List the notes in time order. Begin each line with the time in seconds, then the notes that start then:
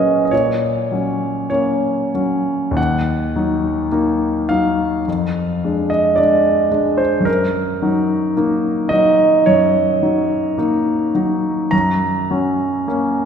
Already playing: A#2 F#3 A#3 C#4 G#4 A#4 B4 D#5
0.25 D#5
0.31 A#2 C#5
0.92 F#3 C#4
1.50 A#3 C#4 C#5
2.14 F#3 C#4
2.71 D#2
2.77 F#5
3.36 F#3 D#4
3.92 A#3 D#4
4.49 F#3 D#4 F5
5.08 F2
5.64 G#3 D4
5.90 D#5
6.16 G#3 D4 D5
6.71 G#3 D4
6.97 C5
7.20 F#2
7.25 A#4
7.82 F#3 D#4
8.37 A#3 D#4
8.89 F#3 D#4 D#5
9.46 F#2 C#5
10.02 F#3 D#4
10.58 A#3 D#4
11.15 F#3 D#4
11.71 F#2 A#5
12.31 F#3 C#4
12.88 A#3 C#4